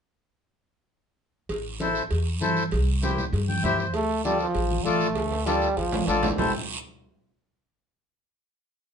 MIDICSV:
0, 0, Header, 1, 5, 480
1, 0, Start_track
1, 0, Key_signature, 0, "minor"
1, 0, Tempo, 305033
1, 2368, Time_signature, 4, 2, 24, 8
1, 14057, End_track
2, 0, Start_track
2, 0, Title_t, "Accordion"
2, 0, Program_c, 0, 21
2, 2845, Note_on_c, 0, 64, 81
2, 2851, Note_on_c, 0, 69, 62
2, 2853, Note_on_c, 0, 72, 79
2, 3183, Note_off_c, 0, 64, 0
2, 3186, Note_off_c, 0, 69, 0
2, 3187, Note_off_c, 0, 72, 0
2, 3796, Note_on_c, 0, 64, 94
2, 3802, Note_on_c, 0, 69, 80
2, 3811, Note_on_c, 0, 72, 93
2, 4139, Note_off_c, 0, 64, 0
2, 4142, Note_off_c, 0, 69, 0
2, 4147, Note_off_c, 0, 72, 0
2, 4763, Note_on_c, 0, 64, 72
2, 4770, Note_on_c, 0, 67, 66
2, 4773, Note_on_c, 0, 72, 76
2, 5102, Note_off_c, 0, 64, 0
2, 5106, Note_off_c, 0, 67, 0
2, 5107, Note_off_c, 0, 72, 0
2, 5490, Note_on_c, 0, 79, 69
2, 5713, Note_off_c, 0, 79, 0
2, 5717, Note_on_c, 0, 64, 94
2, 5724, Note_on_c, 0, 76, 70
2, 5725, Note_on_c, 0, 67, 80
2, 5732, Note_on_c, 0, 72, 98
2, 5941, Note_off_c, 0, 72, 0
2, 5950, Note_off_c, 0, 76, 0
2, 5965, Note_on_c, 0, 72, 66
2, 6059, Note_off_c, 0, 64, 0
2, 6063, Note_off_c, 0, 67, 0
2, 6190, Note_off_c, 0, 72, 0
2, 6675, Note_on_c, 0, 65, 73
2, 6683, Note_on_c, 0, 69, 72
2, 6686, Note_on_c, 0, 74, 78
2, 7017, Note_off_c, 0, 65, 0
2, 7021, Note_off_c, 0, 69, 0
2, 7023, Note_off_c, 0, 74, 0
2, 7637, Note_on_c, 0, 65, 87
2, 7641, Note_on_c, 0, 69, 76
2, 7648, Note_on_c, 0, 74, 108
2, 7978, Note_off_c, 0, 65, 0
2, 7980, Note_off_c, 0, 69, 0
2, 7983, Note_off_c, 0, 74, 0
2, 8599, Note_on_c, 0, 65, 67
2, 8604, Note_on_c, 0, 69, 72
2, 8610, Note_on_c, 0, 74, 87
2, 8938, Note_off_c, 0, 65, 0
2, 8941, Note_off_c, 0, 69, 0
2, 8944, Note_off_c, 0, 74, 0
2, 9562, Note_on_c, 0, 65, 87
2, 9569, Note_on_c, 0, 69, 81
2, 9579, Note_on_c, 0, 74, 99
2, 9899, Note_off_c, 0, 65, 0
2, 9903, Note_off_c, 0, 69, 0
2, 9908, Note_off_c, 0, 74, 0
2, 10038, Note_on_c, 0, 64, 80
2, 10042, Note_on_c, 0, 69, 75
2, 10044, Note_on_c, 0, 72, 91
2, 10265, Note_off_c, 0, 64, 0
2, 10266, Note_off_c, 0, 69, 0
2, 10268, Note_off_c, 0, 72, 0
2, 14057, End_track
3, 0, Start_track
3, 0, Title_t, "Trombone"
3, 0, Program_c, 1, 57
3, 6203, Note_on_c, 1, 57, 106
3, 6651, Note_off_c, 1, 57, 0
3, 6687, Note_on_c, 1, 55, 101
3, 6911, Note_off_c, 1, 55, 0
3, 6926, Note_on_c, 1, 53, 98
3, 7644, Note_on_c, 1, 57, 93
3, 7668, Note_off_c, 1, 53, 0
3, 8595, Note_on_c, 1, 55, 96
3, 8619, Note_off_c, 1, 57, 0
3, 9079, Note_on_c, 1, 53, 83
3, 9103, Note_off_c, 1, 55, 0
3, 9551, Note_on_c, 1, 50, 70
3, 9575, Note_off_c, 1, 53, 0
3, 10038, Note_off_c, 1, 50, 0
3, 10051, Note_on_c, 1, 48, 75
3, 10271, Note_off_c, 1, 48, 0
3, 14057, End_track
4, 0, Start_track
4, 0, Title_t, "Upright bass"
4, 0, Program_c, 2, 32
4, 2348, Note_on_c, 2, 33, 82
4, 3125, Note_off_c, 2, 33, 0
4, 3316, Note_on_c, 2, 40, 84
4, 3801, Note_off_c, 2, 40, 0
4, 3801, Note_on_c, 2, 43, 77
4, 4282, Note_on_c, 2, 36, 86
4, 4306, Note_off_c, 2, 43, 0
4, 5053, Note_off_c, 2, 36, 0
4, 5233, Note_on_c, 2, 43, 91
4, 5624, Note_off_c, 2, 43, 0
4, 5726, Note_on_c, 2, 43, 80
4, 6201, Note_off_c, 2, 43, 0
4, 6201, Note_on_c, 2, 38, 91
4, 6972, Note_off_c, 2, 38, 0
4, 7158, Note_on_c, 2, 33, 93
4, 7545, Note_off_c, 2, 33, 0
4, 7637, Note_on_c, 2, 33, 83
4, 8124, Note_off_c, 2, 33, 0
4, 8124, Note_on_c, 2, 38, 80
4, 8892, Note_off_c, 2, 38, 0
4, 9080, Note_on_c, 2, 33, 89
4, 9466, Note_off_c, 2, 33, 0
4, 9555, Note_on_c, 2, 33, 89
4, 9943, Note_off_c, 2, 33, 0
4, 10039, Note_on_c, 2, 33, 85
4, 10265, Note_off_c, 2, 33, 0
4, 14057, End_track
5, 0, Start_track
5, 0, Title_t, "Drums"
5, 2350, Note_on_c, 9, 56, 93
5, 2354, Note_on_c, 9, 74, 69
5, 2364, Note_on_c, 9, 63, 34
5, 2508, Note_off_c, 9, 56, 0
5, 2511, Note_off_c, 9, 74, 0
5, 2522, Note_off_c, 9, 63, 0
5, 2833, Note_on_c, 9, 63, 82
5, 2839, Note_on_c, 9, 73, 70
5, 2991, Note_off_c, 9, 63, 0
5, 2996, Note_off_c, 9, 73, 0
5, 3071, Note_on_c, 9, 73, 62
5, 3228, Note_off_c, 9, 73, 0
5, 3314, Note_on_c, 9, 56, 83
5, 3316, Note_on_c, 9, 74, 77
5, 3322, Note_on_c, 9, 63, 37
5, 3471, Note_off_c, 9, 56, 0
5, 3474, Note_off_c, 9, 74, 0
5, 3480, Note_off_c, 9, 63, 0
5, 3796, Note_on_c, 9, 73, 70
5, 3800, Note_on_c, 9, 63, 84
5, 3953, Note_off_c, 9, 73, 0
5, 3958, Note_off_c, 9, 63, 0
5, 4040, Note_on_c, 9, 73, 71
5, 4198, Note_off_c, 9, 73, 0
5, 4270, Note_on_c, 9, 74, 71
5, 4282, Note_on_c, 9, 56, 101
5, 4288, Note_on_c, 9, 63, 31
5, 4428, Note_off_c, 9, 74, 0
5, 4439, Note_off_c, 9, 56, 0
5, 4445, Note_off_c, 9, 63, 0
5, 4759, Note_on_c, 9, 73, 66
5, 4770, Note_on_c, 9, 63, 86
5, 4916, Note_off_c, 9, 73, 0
5, 4928, Note_off_c, 9, 63, 0
5, 5007, Note_on_c, 9, 73, 62
5, 5011, Note_on_c, 9, 64, 68
5, 5164, Note_off_c, 9, 73, 0
5, 5168, Note_off_c, 9, 64, 0
5, 5247, Note_on_c, 9, 56, 71
5, 5250, Note_on_c, 9, 63, 31
5, 5257, Note_on_c, 9, 74, 77
5, 5404, Note_off_c, 9, 56, 0
5, 5408, Note_off_c, 9, 63, 0
5, 5414, Note_off_c, 9, 74, 0
5, 5487, Note_on_c, 9, 63, 69
5, 5644, Note_off_c, 9, 63, 0
5, 5727, Note_on_c, 9, 63, 77
5, 5727, Note_on_c, 9, 64, 78
5, 5737, Note_on_c, 9, 73, 61
5, 5884, Note_off_c, 9, 63, 0
5, 5884, Note_off_c, 9, 64, 0
5, 5894, Note_off_c, 9, 73, 0
5, 5961, Note_on_c, 9, 73, 69
5, 6119, Note_off_c, 9, 73, 0
5, 6196, Note_on_c, 9, 56, 103
5, 6203, Note_on_c, 9, 74, 71
5, 6207, Note_on_c, 9, 63, 34
5, 6353, Note_off_c, 9, 56, 0
5, 6360, Note_off_c, 9, 74, 0
5, 6364, Note_off_c, 9, 63, 0
5, 6683, Note_on_c, 9, 73, 61
5, 6691, Note_on_c, 9, 63, 92
5, 6840, Note_off_c, 9, 73, 0
5, 6848, Note_off_c, 9, 63, 0
5, 6911, Note_on_c, 9, 73, 65
5, 7068, Note_off_c, 9, 73, 0
5, 7153, Note_on_c, 9, 56, 81
5, 7155, Note_on_c, 9, 74, 73
5, 7167, Note_on_c, 9, 63, 35
5, 7310, Note_off_c, 9, 56, 0
5, 7313, Note_off_c, 9, 74, 0
5, 7325, Note_off_c, 9, 63, 0
5, 7407, Note_on_c, 9, 63, 71
5, 7564, Note_off_c, 9, 63, 0
5, 7640, Note_on_c, 9, 73, 71
5, 7651, Note_on_c, 9, 63, 87
5, 7798, Note_off_c, 9, 73, 0
5, 7808, Note_off_c, 9, 63, 0
5, 7879, Note_on_c, 9, 73, 73
5, 8037, Note_off_c, 9, 73, 0
5, 8111, Note_on_c, 9, 74, 78
5, 8112, Note_on_c, 9, 56, 94
5, 8112, Note_on_c, 9, 65, 74
5, 8131, Note_on_c, 9, 63, 31
5, 8269, Note_off_c, 9, 56, 0
5, 8269, Note_off_c, 9, 65, 0
5, 8269, Note_off_c, 9, 74, 0
5, 8289, Note_off_c, 9, 63, 0
5, 8363, Note_on_c, 9, 65, 72
5, 8521, Note_off_c, 9, 65, 0
5, 8602, Note_on_c, 9, 65, 78
5, 8605, Note_on_c, 9, 73, 72
5, 8608, Note_on_c, 9, 63, 84
5, 8760, Note_off_c, 9, 65, 0
5, 8762, Note_off_c, 9, 73, 0
5, 8766, Note_off_c, 9, 63, 0
5, 8836, Note_on_c, 9, 73, 62
5, 8994, Note_off_c, 9, 73, 0
5, 9081, Note_on_c, 9, 56, 77
5, 9082, Note_on_c, 9, 74, 81
5, 9091, Note_on_c, 9, 63, 34
5, 9238, Note_off_c, 9, 56, 0
5, 9239, Note_off_c, 9, 74, 0
5, 9248, Note_off_c, 9, 63, 0
5, 9321, Note_on_c, 9, 66, 103
5, 9328, Note_on_c, 9, 63, 77
5, 9478, Note_off_c, 9, 66, 0
5, 9486, Note_off_c, 9, 63, 0
5, 9558, Note_on_c, 9, 66, 83
5, 9568, Note_on_c, 9, 73, 76
5, 9716, Note_off_c, 9, 66, 0
5, 9726, Note_off_c, 9, 73, 0
5, 9799, Note_on_c, 9, 66, 98
5, 9804, Note_on_c, 9, 64, 95
5, 9809, Note_on_c, 9, 73, 74
5, 9956, Note_off_c, 9, 66, 0
5, 9961, Note_off_c, 9, 64, 0
5, 9966, Note_off_c, 9, 73, 0
5, 10044, Note_on_c, 9, 64, 102
5, 10046, Note_on_c, 9, 66, 89
5, 10059, Note_on_c, 9, 74, 100
5, 10202, Note_off_c, 9, 64, 0
5, 10203, Note_off_c, 9, 66, 0
5, 10217, Note_off_c, 9, 74, 0
5, 14057, End_track
0, 0, End_of_file